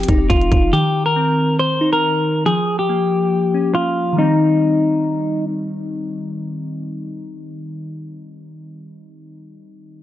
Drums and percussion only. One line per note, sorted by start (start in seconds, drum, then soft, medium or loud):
0.03 closed hi-hat medium
0.08 kick medium
0.08 closed hi-hat medium
0.30 kick medium
0.30 closed hi-hat medium
0.41 closed hi-hat soft
0.52 kick medium
0.52 closed hi-hat medium